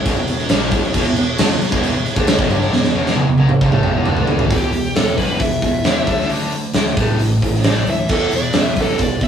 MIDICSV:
0, 0, Header, 1, 9, 480
1, 0, Start_track
1, 0, Key_signature, 1, "minor"
1, 0, Tempo, 447094
1, 1015, Time_signature, 4, 2, 24, 8
1, 9960, End_track
2, 0, Start_track
2, 0, Title_t, "Lead electric guitar"
2, 0, Program_c, 0, 29
2, 4864, Note_on_c, 0, 67, 81
2, 5320, Note_off_c, 0, 67, 0
2, 5323, Note_on_c, 0, 69, 83
2, 5555, Note_off_c, 0, 69, 0
2, 5559, Note_on_c, 0, 71, 96
2, 5795, Note_off_c, 0, 71, 0
2, 5806, Note_on_c, 0, 76, 85
2, 6740, Note_off_c, 0, 76, 0
2, 8216, Note_on_c, 0, 74, 100
2, 8449, Note_off_c, 0, 74, 0
2, 8479, Note_on_c, 0, 76, 91
2, 8701, Note_off_c, 0, 76, 0
2, 8705, Note_on_c, 0, 69, 88
2, 8935, Note_off_c, 0, 69, 0
2, 8975, Note_on_c, 0, 74, 102
2, 9190, Note_off_c, 0, 74, 0
2, 9246, Note_on_c, 0, 76, 84
2, 9447, Note_off_c, 0, 76, 0
2, 9459, Note_on_c, 0, 69, 98
2, 9673, Note_off_c, 0, 69, 0
2, 9682, Note_on_c, 0, 74, 92
2, 9905, Note_off_c, 0, 74, 0
2, 9920, Note_on_c, 0, 76, 83
2, 9960, Note_off_c, 0, 76, 0
2, 9960, End_track
3, 0, Start_track
3, 0, Title_t, "Overdriven electric guitar"
3, 0, Program_c, 1, 29
3, 7230, Note_on_c, 1, 50, 83
3, 7232, Note_on_c, 1, 57, 96
3, 7457, Note_off_c, 1, 50, 0
3, 7458, Note_off_c, 1, 57, 0
3, 9960, End_track
4, 0, Start_track
4, 0, Title_t, "Distorted electric guitar"
4, 0, Program_c, 2, 30
4, 65, Note_on_c, 2, 40, 96
4, 84, Note_on_c, 2, 47, 108
4, 175, Note_off_c, 2, 40, 0
4, 179, Note_off_c, 2, 47, 0
4, 190, Note_on_c, 2, 40, 60
4, 192, Note_on_c, 2, 47, 69
4, 297, Note_off_c, 2, 40, 0
4, 301, Note_off_c, 2, 47, 0
4, 310, Note_on_c, 2, 40, 67
4, 313, Note_on_c, 2, 47, 73
4, 495, Note_off_c, 2, 40, 0
4, 497, Note_off_c, 2, 47, 0
4, 554, Note_on_c, 2, 46, 104
4, 564, Note_on_c, 2, 53, 97
4, 570, Note_on_c, 2, 58, 101
4, 771, Note_on_c, 2, 40, 93
4, 777, Note_off_c, 2, 46, 0
4, 782, Note_off_c, 2, 53, 0
4, 785, Note_off_c, 2, 58, 0
4, 787, Note_on_c, 2, 47, 114
4, 886, Note_off_c, 2, 40, 0
4, 894, Note_off_c, 2, 47, 0
4, 1026, Note_on_c, 2, 40, 83
4, 1039, Note_on_c, 2, 47, 102
4, 1133, Note_off_c, 2, 40, 0
4, 1139, Note_off_c, 2, 47, 0
4, 1157, Note_on_c, 2, 40, 64
4, 1169, Note_on_c, 2, 47, 68
4, 1255, Note_off_c, 2, 40, 0
4, 1259, Note_off_c, 2, 47, 0
4, 1268, Note_on_c, 2, 40, 59
4, 1272, Note_on_c, 2, 47, 71
4, 1452, Note_off_c, 2, 40, 0
4, 1454, Note_off_c, 2, 47, 0
4, 1504, Note_on_c, 2, 50, 96
4, 1515, Note_on_c, 2, 57, 97
4, 1610, Note_off_c, 2, 50, 0
4, 1612, Note_on_c, 2, 40, 66
4, 1616, Note_off_c, 2, 57, 0
4, 1618, Note_on_c, 2, 47, 68
4, 1731, Note_off_c, 2, 40, 0
4, 1734, Note_off_c, 2, 47, 0
4, 1849, Note_on_c, 2, 40, 88
4, 1849, Note_on_c, 2, 47, 98
4, 1868, Note_on_c, 2, 52, 92
4, 2081, Note_off_c, 2, 40, 0
4, 2081, Note_off_c, 2, 47, 0
4, 2091, Note_off_c, 2, 52, 0
4, 2097, Note_on_c, 2, 40, 65
4, 2100, Note_on_c, 2, 47, 66
4, 2200, Note_off_c, 2, 40, 0
4, 2214, Note_off_c, 2, 47, 0
4, 2332, Note_on_c, 2, 50, 89
4, 2334, Note_on_c, 2, 57, 88
4, 2347, Note_on_c, 2, 62, 90
4, 2560, Note_on_c, 2, 40, 97
4, 2562, Note_off_c, 2, 50, 0
4, 2563, Note_off_c, 2, 57, 0
4, 2567, Note_on_c, 2, 47, 101
4, 2569, Note_off_c, 2, 62, 0
4, 2676, Note_off_c, 2, 40, 0
4, 2678, Note_off_c, 2, 47, 0
4, 2682, Note_on_c, 2, 43, 103
4, 2683, Note_on_c, 2, 50, 98
4, 2694, Note_on_c, 2, 55, 104
4, 2916, Note_off_c, 2, 43, 0
4, 2917, Note_off_c, 2, 50, 0
4, 2922, Note_off_c, 2, 55, 0
4, 2930, Note_on_c, 2, 40, 60
4, 2944, Note_on_c, 2, 47, 63
4, 3039, Note_off_c, 2, 47, 0
4, 3041, Note_off_c, 2, 40, 0
4, 3052, Note_on_c, 2, 47, 66
4, 3054, Note_on_c, 2, 40, 61
4, 3152, Note_off_c, 2, 40, 0
4, 3155, Note_off_c, 2, 47, 0
4, 3165, Note_on_c, 2, 40, 90
4, 3167, Note_on_c, 2, 47, 93
4, 3177, Note_on_c, 2, 52, 100
4, 3506, Note_off_c, 2, 40, 0
4, 3512, Note_off_c, 2, 47, 0
4, 3519, Note_on_c, 2, 40, 66
4, 3523, Note_off_c, 2, 52, 0
4, 3524, Note_on_c, 2, 47, 70
4, 3625, Note_off_c, 2, 47, 0
4, 3637, Note_on_c, 2, 47, 91
4, 3641, Note_off_c, 2, 40, 0
4, 3643, Note_on_c, 2, 54, 101
4, 3753, Note_off_c, 2, 47, 0
4, 3756, Note_off_c, 2, 54, 0
4, 3877, Note_on_c, 2, 43, 97
4, 3885, Note_on_c, 2, 50, 92
4, 3982, Note_off_c, 2, 50, 0
4, 3986, Note_on_c, 2, 45, 90
4, 3993, Note_off_c, 2, 43, 0
4, 4001, Note_on_c, 2, 52, 101
4, 4002, Note_on_c, 2, 57, 99
4, 4228, Note_off_c, 2, 45, 0
4, 4231, Note_on_c, 2, 40, 87
4, 4235, Note_off_c, 2, 52, 0
4, 4236, Note_off_c, 2, 57, 0
4, 4240, Note_on_c, 2, 47, 88
4, 4328, Note_off_c, 2, 47, 0
4, 4333, Note_on_c, 2, 50, 98
4, 4345, Note_on_c, 2, 57, 100
4, 4348, Note_on_c, 2, 62, 105
4, 4350, Note_off_c, 2, 40, 0
4, 4581, Note_off_c, 2, 50, 0
4, 4587, Note_off_c, 2, 57, 0
4, 4589, Note_off_c, 2, 62, 0
4, 4591, Note_on_c, 2, 52, 97
4, 4606, Note_on_c, 2, 59, 101
4, 4702, Note_off_c, 2, 52, 0
4, 4710, Note_on_c, 2, 45, 89
4, 4711, Note_off_c, 2, 59, 0
4, 4715, Note_on_c, 2, 52, 91
4, 4829, Note_off_c, 2, 45, 0
4, 4831, Note_on_c, 2, 40, 75
4, 4832, Note_off_c, 2, 52, 0
4, 4835, Note_on_c, 2, 47, 83
4, 4848, Note_on_c, 2, 52, 86
4, 5063, Note_off_c, 2, 40, 0
4, 5065, Note_off_c, 2, 47, 0
4, 5072, Note_off_c, 2, 52, 0
4, 5079, Note_on_c, 2, 47, 78
4, 5080, Note_on_c, 2, 40, 73
4, 5296, Note_off_c, 2, 40, 0
4, 5298, Note_off_c, 2, 47, 0
4, 5308, Note_on_c, 2, 40, 72
4, 5316, Note_on_c, 2, 47, 75
4, 5533, Note_off_c, 2, 40, 0
4, 5536, Note_off_c, 2, 47, 0
4, 5561, Note_on_c, 2, 40, 97
4, 5567, Note_on_c, 2, 47, 89
4, 5570, Note_on_c, 2, 52, 104
4, 5778, Note_off_c, 2, 40, 0
4, 5787, Note_off_c, 2, 47, 0
4, 5791, Note_on_c, 2, 40, 80
4, 5793, Note_off_c, 2, 52, 0
4, 5800, Note_on_c, 2, 47, 81
4, 6015, Note_off_c, 2, 40, 0
4, 6019, Note_off_c, 2, 47, 0
4, 6050, Note_on_c, 2, 40, 66
4, 6055, Note_on_c, 2, 47, 76
4, 6265, Note_off_c, 2, 40, 0
4, 6267, Note_off_c, 2, 47, 0
4, 6281, Note_on_c, 2, 40, 88
4, 6290, Note_on_c, 2, 47, 99
4, 6294, Note_on_c, 2, 52, 101
4, 6510, Note_off_c, 2, 40, 0
4, 6510, Note_off_c, 2, 47, 0
4, 6515, Note_on_c, 2, 50, 90
4, 6517, Note_off_c, 2, 52, 0
4, 6523, Note_on_c, 2, 57, 102
4, 6533, Note_on_c, 2, 62, 99
4, 6748, Note_off_c, 2, 50, 0
4, 6752, Note_off_c, 2, 57, 0
4, 6757, Note_off_c, 2, 62, 0
4, 6765, Note_on_c, 2, 50, 83
4, 6775, Note_on_c, 2, 62, 90
4, 6781, Note_on_c, 2, 57, 90
4, 6993, Note_off_c, 2, 50, 0
4, 6998, Note_off_c, 2, 62, 0
4, 7001, Note_off_c, 2, 57, 0
4, 7022, Note_on_c, 2, 50, 68
4, 7025, Note_on_c, 2, 57, 81
4, 7232, Note_off_c, 2, 50, 0
4, 7234, Note_off_c, 2, 57, 0
4, 7273, Note_on_c, 2, 50, 73
4, 7278, Note_on_c, 2, 57, 79
4, 7479, Note_off_c, 2, 50, 0
4, 7481, Note_off_c, 2, 57, 0
4, 7501, Note_on_c, 2, 45, 86
4, 7510, Note_on_c, 2, 52, 100
4, 7517, Note_on_c, 2, 57, 95
4, 7723, Note_off_c, 2, 45, 0
4, 7727, Note_off_c, 2, 52, 0
4, 7731, Note_off_c, 2, 57, 0
4, 7742, Note_on_c, 2, 45, 85
4, 7743, Note_on_c, 2, 52, 89
4, 7954, Note_off_c, 2, 45, 0
4, 7955, Note_off_c, 2, 52, 0
4, 7972, Note_on_c, 2, 45, 80
4, 7979, Note_on_c, 2, 52, 82
4, 8190, Note_off_c, 2, 45, 0
4, 8193, Note_off_c, 2, 52, 0
4, 8206, Note_on_c, 2, 45, 86
4, 8212, Note_on_c, 2, 52, 93
4, 8219, Note_on_c, 2, 57, 110
4, 8432, Note_off_c, 2, 45, 0
4, 8440, Note_off_c, 2, 52, 0
4, 8443, Note_off_c, 2, 57, 0
4, 8445, Note_on_c, 2, 45, 79
4, 8451, Note_on_c, 2, 52, 86
4, 8667, Note_off_c, 2, 45, 0
4, 8670, Note_off_c, 2, 52, 0
4, 8694, Note_on_c, 2, 40, 82
4, 8706, Note_on_c, 2, 47, 92
4, 8709, Note_on_c, 2, 52, 96
4, 8922, Note_off_c, 2, 40, 0
4, 8928, Note_off_c, 2, 47, 0
4, 8929, Note_off_c, 2, 52, 0
4, 8944, Note_on_c, 2, 40, 70
4, 8946, Note_on_c, 2, 47, 75
4, 9158, Note_off_c, 2, 40, 0
4, 9159, Note_off_c, 2, 47, 0
4, 9184, Note_on_c, 2, 40, 73
4, 9190, Note_on_c, 2, 47, 86
4, 9398, Note_off_c, 2, 40, 0
4, 9401, Note_off_c, 2, 47, 0
4, 9436, Note_on_c, 2, 40, 97
4, 9442, Note_on_c, 2, 47, 95
4, 9453, Note_on_c, 2, 52, 108
4, 9650, Note_off_c, 2, 40, 0
4, 9657, Note_off_c, 2, 47, 0
4, 9663, Note_off_c, 2, 52, 0
4, 9663, Note_on_c, 2, 40, 82
4, 9669, Note_on_c, 2, 47, 83
4, 9878, Note_off_c, 2, 40, 0
4, 9882, Note_off_c, 2, 47, 0
4, 9911, Note_on_c, 2, 40, 71
4, 9916, Note_on_c, 2, 47, 77
4, 9960, Note_off_c, 2, 40, 0
4, 9960, Note_off_c, 2, 47, 0
4, 9960, End_track
5, 0, Start_track
5, 0, Title_t, "Picked electric bass"
5, 0, Program_c, 3, 34
5, 53, Note_on_c, 3, 28, 93
5, 168, Note_off_c, 3, 28, 0
5, 178, Note_on_c, 3, 28, 80
5, 290, Note_off_c, 3, 28, 0
5, 299, Note_on_c, 3, 28, 83
5, 521, Note_off_c, 3, 28, 0
5, 533, Note_on_c, 3, 34, 91
5, 757, Note_off_c, 3, 34, 0
5, 765, Note_on_c, 3, 28, 105
5, 881, Note_off_c, 3, 28, 0
5, 1010, Note_on_c, 3, 28, 95
5, 1123, Note_off_c, 3, 28, 0
5, 1128, Note_on_c, 3, 28, 87
5, 1230, Note_off_c, 3, 28, 0
5, 1236, Note_on_c, 3, 28, 83
5, 1466, Note_off_c, 3, 28, 0
5, 1487, Note_on_c, 3, 38, 92
5, 1596, Note_off_c, 3, 38, 0
5, 1602, Note_on_c, 3, 28, 78
5, 1715, Note_off_c, 3, 28, 0
5, 1845, Note_on_c, 3, 28, 90
5, 2069, Note_off_c, 3, 28, 0
5, 2077, Note_on_c, 3, 28, 82
5, 2190, Note_off_c, 3, 28, 0
5, 2319, Note_on_c, 3, 38, 91
5, 2546, Note_off_c, 3, 38, 0
5, 2553, Note_on_c, 3, 28, 92
5, 2660, Note_off_c, 3, 28, 0
5, 2666, Note_on_c, 3, 31, 93
5, 2898, Note_off_c, 3, 31, 0
5, 2915, Note_on_c, 3, 28, 84
5, 3027, Note_off_c, 3, 28, 0
5, 3033, Note_on_c, 3, 28, 82
5, 3150, Note_off_c, 3, 28, 0
5, 3170, Note_on_c, 3, 28, 93
5, 3501, Note_off_c, 3, 28, 0
5, 3528, Note_on_c, 3, 28, 80
5, 3635, Note_off_c, 3, 28, 0
5, 3641, Note_on_c, 3, 35, 104
5, 3749, Note_off_c, 3, 35, 0
5, 3877, Note_on_c, 3, 31, 97
5, 3985, Note_off_c, 3, 31, 0
5, 3991, Note_on_c, 3, 33, 95
5, 4220, Note_off_c, 3, 33, 0
5, 4228, Note_on_c, 3, 28, 86
5, 4347, Note_off_c, 3, 28, 0
5, 4356, Note_on_c, 3, 38, 86
5, 4583, Note_off_c, 3, 38, 0
5, 4594, Note_on_c, 3, 40, 98
5, 4705, Note_off_c, 3, 40, 0
5, 4711, Note_on_c, 3, 33, 93
5, 4829, Note_off_c, 3, 33, 0
5, 4835, Note_on_c, 3, 28, 94
5, 5031, Note_off_c, 3, 28, 0
5, 5071, Note_on_c, 3, 28, 90
5, 5268, Note_off_c, 3, 28, 0
5, 5314, Note_on_c, 3, 28, 81
5, 5703, Note_off_c, 3, 28, 0
5, 5792, Note_on_c, 3, 28, 85
5, 5990, Note_off_c, 3, 28, 0
5, 6034, Note_on_c, 3, 28, 88
5, 6231, Note_off_c, 3, 28, 0
5, 6265, Note_on_c, 3, 40, 80
5, 6466, Note_off_c, 3, 40, 0
5, 6514, Note_on_c, 3, 38, 90
5, 6712, Note_off_c, 3, 38, 0
5, 6740, Note_on_c, 3, 38, 94
5, 7137, Note_off_c, 3, 38, 0
5, 7232, Note_on_c, 3, 38, 88
5, 7432, Note_off_c, 3, 38, 0
5, 7474, Note_on_c, 3, 33, 99
5, 7674, Note_off_c, 3, 33, 0
5, 7718, Note_on_c, 3, 33, 96
5, 7917, Note_off_c, 3, 33, 0
5, 7968, Note_on_c, 3, 33, 89
5, 8163, Note_off_c, 3, 33, 0
5, 8205, Note_on_c, 3, 33, 89
5, 8402, Note_off_c, 3, 33, 0
5, 8439, Note_on_c, 3, 38, 92
5, 8638, Note_off_c, 3, 38, 0
5, 8683, Note_on_c, 3, 28, 98
5, 8882, Note_off_c, 3, 28, 0
5, 8918, Note_on_c, 3, 28, 85
5, 9119, Note_off_c, 3, 28, 0
5, 9155, Note_on_c, 3, 28, 93
5, 9550, Note_off_c, 3, 28, 0
5, 9651, Note_on_c, 3, 28, 94
5, 9848, Note_off_c, 3, 28, 0
5, 9883, Note_on_c, 3, 28, 88
5, 9960, Note_off_c, 3, 28, 0
5, 9960, End_track
6, 0, Start_track
6, 0, Title_t, "Muted distorted electric guitar strokes"
6, 921, Note_on_c, 9, 29, 58
6, 1028, Note_off_c, 9, 29, 0
6, 1754, Note_on_c, 9, 29, 61
6, 1861, Note_off_c, 9, 29, 0
6, 2213, Note_on_c, 9, 29, 62
6, 2320, Note_off_c, 9, 29, 0
6, 3753, Note_on_c, 9, 29, 61
6, 3860, Note_off_c, 9, 29, 0
6, 9960, End_track
7, 0, Start_track
7, 0, Title_t, "Muted overdriven electric guitar strokes"
7, 1724, Note_on_c, 9, 29, 57
7, 1831, Note_off_c, 9, 29, 0
7, 2203, Note_on_c, 9, 29, 56
7, 2310, Note_off_c, 9, 29, 0
7, 3758, Note_on_c, 9, 29, 62
7, 3865, Note_off_c, 9, 29, 0
7, 9960, End_track
8, 0, Start_track
8, 0, Title_t, "Muted picked electric bass strokes"
8, 887, Note_on_c, 9, 29, 41
8, 994, Note_off_c, 9, 29, 0
8, 1721, Note_on_c, 9, 29, 44
8, 1829, Note_off_c, 9, 29, 0
8, 2196, Note_on_c, 9, 29, 42
8, 2304, Note_off_c, 9, 29, 0
8, 3756, Note_on_c, 9, 29, 37
8, 3863, Note_off_c, 9, 29, 0
8, 9960, End_track
9, 0, Start_track
9, 0, Title_t, "Drums"
9, 58, Note_on_c, 9, 49, 77
9, 62, Note_on_c, 9, 36, 93
9, 166, Note_off_c, 9, 49, 0
9, 169, Note_off_c, 9, 36, 0
9, 297, Note_on_c, 9, 49, 63
9, 404, Note_off_c, 9, 49, 0
9, 421, Note_on_c, 9, 38, 34
9, 525, Note_on_c, 9, 49, 81
9, 528, Note_off_c, 9, 38, 0
9, 535, Note_on_c, 9, 38, 106
9, 633, Note_off_c, 9, 49, 0
9, 642, Note_off_c, 9, 38, 0
9, 763, Note_on_c, 9, 49, 58
9, 771, Note_on_c, 9, 36, 95
9, 871, Note_off_c, 9, 49, 0
9, 879, Note_off_c, 9, 36, 0
9, 895, Note_on_c, 9, 38, 37
9, 1003, Note_off_c, 9, 38, 0
9, 1009, Note_on_c, 9, 49, 91
9, 1012, Note_on_c, 9, 36, 98
9, 1116, Note_off_c, 9, 49, 0
9, 1119, Note_off_c, 9, 36, 0
9, 1250, Note_on_c, 9, 49, 64
9, 1357, Note_off_c, 9, 49, 0
9, 1485, Note_on_c, 9, 49, 92
9, 1495, Note_on_c, 9, 38, 127
9, 1592, Note_off_c, 9, 49, 0
9, 1602, Note_off_c, 9, 38, 0
9, 1734, Note_on_c, 9, 49, 62
9, 1841, Note_off_c, 9, 49, 0
9, 1849, Note_on_c, 9, 36, 105
9, 1956, Note_off_c, 9, 36, 0
9, 1970, Note_on_c, 9, 49, 68
9, 2078, Note_off_c, 9, 49, 0
9, 2209, Note_on_c, 9, 49, 53
9, 2316, Note_off_c, 9, 49, 0
9, 2323, Note_on_c, 9, 36, 105
9, 2431, Note_off_c, 9, 36, 0
9, 2439, Note_on_c, 9, 49, 82
9, 2448, Note_on_c, 9, 38, 118
9, 2546, Note_off_c, 9, 49, 0
9, 2556, Note_off_c, 9, 38, 0
9, 2562, Note_on_c, 9, 36, 111
9, 2669, Note_off_c, 9, 36, 0
9, 2688, Note_on_c, 9, 49, 52
9, 2795, Note_off_c, 9, 49, 0
9, 2809, Note_on_c, 9, 38, 35
9, 2916, Note_off_c, 9, 38, 0
9, 2927, Note_on_c, 9, 38, 65
9, 3035, Note_off_c, 9, 38, 0
9, 3045, Note_on_c, 9, 38, 59
9, 3153, Note_off_c, 9, 38, 0
9, 3290, Note_on_c, 9, 38, 63
9, 3391, Note_on_c, 9, 48, 78
9, 3397, Note_off_c, 9, 38, 0
9, 3498, Note_off_c, 9, 48, 0
9, 3627, Note_on_c, 9, 48, 87
9, 3735, Note_off_c, 9, 48, 0
9, 3747, Note_on_c, 9, 47, 68
9, 3855, Note_off_c, 9, 47, 0
9, 3878, Note_on_c, 9, 36, 101
9, 3985, Note_off_c, 9, 36, 0
9, 3994, Note_on_c, 9, 47, 77
9, 4102, Note_off_c, 9, 47, 0
9, 4113, Note_on_c, 9, 45, 84
9, 4221, Note_off_c, 9, 45, 0
9, 4353, Note_on_c, 9, 45, 96
9, 4461, Note_off_c, 9, 45, 0
9, 4473, Note_on_c, 9, 43, 85
9, 4580, Note_off_c, 9, 43, 0
9, 4589, Note_on_c, 9, 43, 95
9, 4697, Note_off_c, 9, 43, 0
9, 4713, Note_on_c, 9, 43, 101
9, 4820, Note_off_c, 9, 43, 0
9, 4835, Note_on_c, 9, 46, 78
9, 4837, Note_on_c, 9, 36, 104
9, 4943, Note_off_c, 9, 46, 0
9, 4944, Note_off_c, 9, 36, 0
9, 5075, Note_on_c, 9, 46, 57
9, 5182, Note_off_c, 9, 46, 0
9, 5321, Note_on_c, 9, 46, 88
9, 5330, Note_on_c, 9, 38, 112
9, 5428, Note_off_c, 9, 46, 0
9, 5438, Note_off_c, 9, 38, 0
9, 5558, Note_on_c, 9, 36, 75
9, 5567, Note_on_c, 9, 46, 59
9, 5666, Note_off_c, 9, 36, 0
9, 5674, Note_off_c, 9, 46, 0
9, 5792, Note_on_c, 9, 46, 67
9, 5797, Note_on_c, 9, 36, 101
9, 5899, Note_off_c, 9, 46, 0
9, 5905, Note_off_c, 9, 36, 0
9, 6037, Note_on_c, 9, 36, 83
9, 6037, Note_on_c, 9, 46, 51
9, 6144, Note_off_c, 9, 46, 0
9, 6145, Note_off_c, 9, 36, 0
9, 6271, Note_on_c, 9, 46, 75
9, 6281, Note_on_c, 9, 38, 104
9, 6378, Note_off_c, 9, 46, 0
9, 6388, Note_off_c, 9, 38, 0
9, 6518, Note_on_c, 9, 36, 93
9, 6520, Note_on_c, 9, 46, 50
9, 6625, Note_off_c, 9, 36, 0
9, 6627, Note_off_c, 9, 46, 0
9, 6650, Note_on_c, 9, 38, 32
9, 6757, Note_off_c, 9, 38, 0
9, 6759, Note_on_c, 9, 46, 72
9, 6866, Note_off_c, 9, 46, 0
9, 6997, Note_on_c, 9, 46, 56
9, 7104, Note_off_c, 9, 46, 0
9, 7231, Note_on_c, 9, 46, 86
9, 7241, Note_on_c, 9, 38, 112
9, 7338, Note_off_c, 9, 46, 0
9, 7348, Note_off_c, 9, 38, 0
9, 7484, Note_on_c, 9, 36, 114
9, 7486, Note_on_c, 9, 46, 59
9, 7591, Note_off_c, 9, 36, 0
9, 7593, Note_off_c, 9, 46, 0
9, 7723, Note_on_c, 9, 46, 71
9, 7830, Note_off_c, 9, 46, 0
9, 7970, Note_on_c, 9, 36, 75
9, 7977, Note_on_c, 9, 46, 60
9, 8078, Note_off_c, 9, 36, 0
9, 8084, Note_off_c, 9, 46, 0
9, 8104, Note_on_c, 9, 38, 33
9, 8198, Note_on_c, 9, 46, 86
9, 8207, Note_off_c, 9, 38, 0
9, 8207, Note_on_c, 9, 38, 110
9, 8305, Note_off_c, 9, 46, 0
9, 8315, Note_off_c, 9, 38, 0
9, 8444, Note_on_c, 9, 46, 60
9, 8551, Note_off_c, 9, 46, 0
9, 8684, Note_on_c, 9, 49, 92
9, 8691, Note_on_c, 9, 36, 108
9, 8791, Note_off_c, 9, 49, 0
9, 8798, Note_off_c, 9, 36, 0
9, 8922, Note_on_c, 9, 46, 63
9, 9029, Note_off_c, 9, 46, 0
9, 9156, Note_on_c, 9, 46, 84
9, 9166, Note_on_c, 9, 38, 118
9, 9264, Note_off_c, 9, 46, 0
9, 9273, Note_off_c, 9, 38, 0
9, 9405, Note_on_c, 9, 46, 60
9, 9412, Note_on_c, 9, 36, 79
9, 9513, Note_off_c, 9, 46, 0
9, 9520, Note_off_c, 9, 36, 0
9, 9644, Note_on_c, 9, 46, 75
9, 9654, Note_on_c, 9, 36, 99
9, 9751, Note_off_c, 9, 46, 0
9, 9761, Note_off_c, 9, 36, 0
9, 9883, Note_on_c, 9, 46, 52
9, 9891, Note_on_c, 9, 36, 77
9, 9960, Note_off_c, 9, 36, 0
9, 9960, Note_off_c, 9, 46, 0
9, 9960, End_track
0, 0, End_of_file